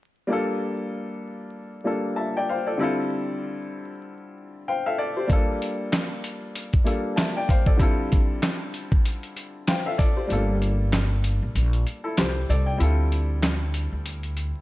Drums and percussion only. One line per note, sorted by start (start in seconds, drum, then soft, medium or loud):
5.30 kick loud
5.30 closed hi-hat medium
5.62 closed hi-hat medium
5.92 snare loud
5.92 clap medium
5.92 closed hi-hat medium
6.24 closed hi-hat medium
6.56 closed hi-hat medium
6.73 kick medium
6.73 closed hi-hat soft
6.87 closed hi-hat medium
7.17 snare loud
7.17 clap loud
7.17 closed hi-hat medium
7.49 kick medium
7.49 closed hi-hat medium
7.66 kick medium
7.80 kick loud
7.80 closed hi-hat medium
8.12 kick loud
8.12 closed hi-hat medium
8.42 snare loud
8.42 clap medium
8.42 closed hi-hat medium
8.74 closed hi-hat medium
8.92 kick medium
9.05 closed hi-hat medium
9.23 closed hi-hat soft
9.36 closed hi-hat medium
9.67 snare loud
9.67 clap medium
9.67 closed hi-hat medium
9.99 kick medium
9.99 closed hi-hat medium
10.30 closed hi-hat medium
10.62 closed hi-hat medium
10.92 snare loud
10.92 clap medium
10.92 closed hi-hat medium
11.24 closed hi-hat medium
11.56 closed hi-hat medium
11.73 closed hi-hat soft
11.87 closed hi-hat medium
12.17 snare loud
12.17 clap medium
12.17 closed hi-hat medium
12.50 closed hi-hat medium
12.80 closed hi-hat medium
13.12 closed hi-hat medium
13.43 snare loud
13.43 clap medium
13.43 closed hi-hat medium
13.74 closed hi-hat medium
14.06 closed hi-hat medium
14.23 closed hi-hat soft
14.37 closed hi-hat medium